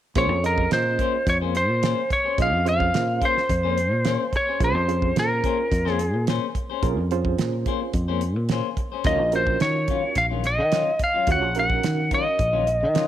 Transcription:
0.15 A#1 A#3 C#4 F4 G#4 C5 C#5, kick, closed hi-hat
0.29 F2, muted clean electric guitar stroke
0.44 C#4 F4 G#4 A#4 D#5, closed hi-hat
0.58 muted clean electric guitar stroke, kick
0.71 A#2 C5, muted clean electric guitar stroke, snare, closed hi-hat
0.86 muted clean electric guitar stroke
0.99 A#3 C#4 G#4 C5, kick, closed hi-hat
1.14 muted clean electric guitar stroke
1.27 F2 C#5, kick, closed hi-hat
1.41 A#3 C#4 G#4 C5
1.55 C5, muted clean electric guitar stroke, closed hi-hat
1.69 A#2, muted clean electric guitar stroke
1.82 A#3 C#4 G#4 C5, snare, closed hi-hat
2.10 C#5, muted clean electric guitar stroke, kick, closed hi-hat
2.25 C#4 G#4 C5
2.38 A#1 C#4 F4 G#4 D#5 F5, kick, closed hi-hat
2.53 F2, muted clean electric guitar stroke
2.65 C#4 F4 G#4 C5 F5, closed hi-hat
2.80 muted clean electric guitar stroke, kick
2.94 A#2, muted clean electric guitar stroke, snare, closed hi-hat
3.08 muted clean electric guitar stroke
3.21 A#3 C#4 G#4 C5, kick, closed hi-hat
3.25 C5
3.36 muted clean electric guitar stroke, snare
3.49 F2, kick, closed hi-hat
3.63 A#3 C#4 G#4 C5
3.78 muted clean electric guitar stroke, closed hi-hat
3.92 A#2, muted clean electric guitar stroke
4.05 A#3 C#4 G#4 C5, snare, closed hi-hat
4.33 C#5, muted clean electric guitar stroke, kick, closed hi-hat
4.47 C#4 G#4 C5
4.60 A#1 C#4 F4 G#4 C5, kick, closed hi-hat
4.64 C5
4.75 F2, muted clean electric guitar stroke
4.88 C#4 F4 G#4 C5, closed hi-hat
5.02 muted clean electric guitar stroke, kick
5.16 A#2 A#4, muted clean electric guitar stroke, snare, closed hi-hat
5.30 muted clean electric guitar stroke
5.44 A#3 C#4 G#4 C5, kick, closed hi-hat
5.59 muted clean electric guitar stroke
5.72 F2, kick, closed hi-hat
5.85 A#3 C#4 G#4 C5, snare
5.92 G#4
5.99 muted clean electric guitar stroke, closed hi-hat
6.14 A#2, muted clean electric guitar stroke
6.27 A#3 C#4 G#4 C5, snare, closed hi-hat
6.55 muted clean electric guitar stroke, kick, closed hi-hat
6.70 C#4 G#4 C5
6.83 A#1 C#4 F4 G#4 A#4, kick, closed hi-hat
6.97 F2, muted clean electric guitar stroke
7.11 C#4 F4 G#4 C5, closed hi-hat
7.25 muted clean electric guitar stroke, kick
7.38 A#2, muted clean electric guitar stroke, snare, closed hi-hat
7.53 muted clean electric guitar stroke
7.66 A#3 C#4 G#4 C5, kick, closed hi-hat
7.81 muted clean electric guitar stroke
7.93 F2, kick, closed hi-hat
8.08 A#3 C#4 G#4 C5
8.21 muted clean electric guitar stroke, closed hi-hat
8.36 A#2, muted clean electric guitar stroke
8.49 A#3 C#4 G#4 C5, snare, closed hi-hat
8.77 muted clean electric guitar stroke, kick, closed hi-hat
8.92 C#4 G#4 C5
9.04 D#2 D#3 F#3 C#4 F4 F#4 A#4 D#5, kick, closed hi-hat
9.19 A#1, muted clean electric guitar stroke
9.32 C#4 F4 F#4 A#4 C5, closed hi-hat
9.47 muted clean electric guitar stroke, kick
9.60 D#3 C#5, muted clean electric guitar stroke, snare, closed hi-hat
9.76 muted clean electric guitar stroke
9.88 D#3 F#3 C#4 F4, kick, closed hi-hat
10.03 muted clean electric guitar stroke
10.15 A#1 F5, kick, closed hi-hat
10.30 D#3 F#3 C#4 F4
10.44 D#5, muted clean electric guitar stroke, snare, closed hi-hat
10.58 D#3, muted clean electric guitar stroke
10.72 D#3 F#3 C#4 F4, snare, closed hi-hat
10.99 muted clean electric guitar stroke, kick, closed hi-hat
11.04 F5
11.14 F#3 C#4 F4
11.27 D#2 C#4 F4 F#4 C#5, kick, closed hi-hat
11.32 F#5
11.42 A#1, muted clean electric guitar stroke
11.55 C#4 D#4 F#4 A#4, closed hi-hat
11.59 F#5
11.70 muted clean electric guitar stroke, kick
11.83 D#3, muted clean electric guitar stroke, snare, closed hi-hat
11.97 muted clean electric guitar stroke
12.11 D#3 F#3 C#4 F4 D#5, kick, closed hi-hat
12.25 muted clean electric guitar stroke
12.39 A#1, kick, closed hi-hat
12.53 D#3 F#3 C#4 F4
12.67 muted clean electric guitar stroke, closed hi-hat
12.81 D#3, muted clean electric guitar stroke
12.94 D#3 F#3 C#4 F4, snare, closed hi-hat

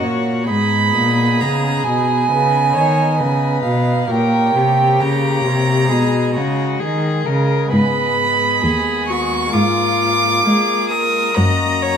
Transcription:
Already playing: A#3 F#4 C#5
0.01 A#2 C#5
0.43 B3 D#4 D#5
0.48 G#2 G#4 B5
0.93 A#2
1.40 C#3 A#5
1.84 B2 G#5
2.30 C#3 B4
2.75 D#3 C#5
3.20 C#3 B4
3.64 B2 F5
4.05 A#3 G4 C#5
4.10 A#2 A#4 G5
4.55 C3 G4
5.00 C#3 A#5
5.45 C3
5.86 B2 G#3 G#4 D#5
5.90 B2 G#4
6.35 C#3 F#4
6.80 D#3 G#4
7.26 C#3 A#4
7.66 G#3 B3 G#4
7.71 G#2 B4 D#5 B5
8.62 D#2 G#4
9.08 F#4 C#6
9.48 G#3 A#3 F4
9.52 G#2 F4 F5 D6
10.46 G#3 G#4
10.90 A#4 D#6
11.33 A#3 F#4 D#5 A#5
11.37 F#2
11.82 C#5

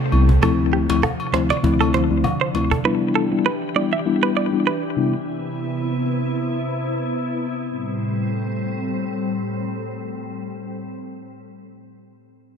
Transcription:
Already playing: C3 A3 G4, downlifter
0.12 C2 G3 B3 C4 E4, high agogo
0.29 cajon bass
0.42 D2 D3 F3 A3 C4 E4 A4, cajon bass, high agogo
0.59 cajon slap
0.73 G4, cajon slap
0.89 D2 F3 A3 C4 E4, cajon slap, high agogo
1.03 A4, cajon bass, low woodblock
1.20 high agogo
1.33 D2 F3 A3 C4 E4 C5, cajon slap
1.50 D5, cajon slap, high agogo
1.63 D2 F3 A3 C4 E4, cajon bass
1.81 A4, high agogo
1.94 C5, cajon slap
2.10 D2 F3 A3 C4 E4, cajon slap
2.24 cajon bass, high agogo, low woodblock
2.41 C5, cajon slap
2.54 D2 F3 A3 C4 E4, cajon slap, high agogo
2.71 A4, cajon bass
2.85 E3 G3 B3 D4 E4 G4 B4
3.15 A4
3.32 G3 B3 D4 E4
3.46 B4
3.75 G3 B3 D4 E4 D5
3.93 E5
4.06 G3 B3 D4 E4
4.23 B4
4.37 D5
4.53 G3 B3 D4 E4
4.67 B4
4.97 C3 G3 B3 D4 E4
7.70 A2 G3 C4

